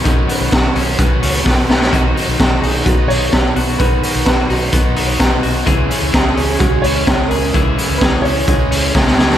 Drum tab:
HH |x-o-x-o-x-o-----|x-o-x-o-x-o-x-o-|x-o-x-o-x-o-x-o-|x-o-x-o-x-o-x-o-|
SD |----o-------o-oo|----o-------o---|----o-------o---|----o-------o---|
BD |o---o---o---o---|o---o---o---o---|o---o---o---o---|o---o---o---o---|

HH |x-o-x-o-x-o-----|
SD |----o-------oooo|
BD |o---o---o---o---|